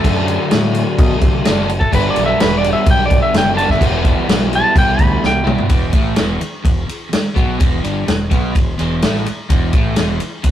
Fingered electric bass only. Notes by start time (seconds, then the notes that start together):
0.05 F#2
0.52 A2
0.99 B2
1.22 C3
1.46 F#1
1.93 G1
2.17 B1
2.41 E1
2.87 B1
3.34 F#1
3.81 E1
4.28 B1
4.76 C2
5.00 D2
5.24 C2
5.70 E1
5.94 A1
6.18 E1
6.42 muted fingered electric bass stroke
6.65 E1
6.88 muted fingered electric bass stroke
7.12 muted fingered electric bass stroke
7.37 B1
7.61 E1
7.84 G1
8.08 E1
8.32 B1
8.56 E1
8.79 E1
9.04 A1
9.28 muted fingered electric bass stroke
9.50 E1
9.73 A1
10.00 E1
10.45 E1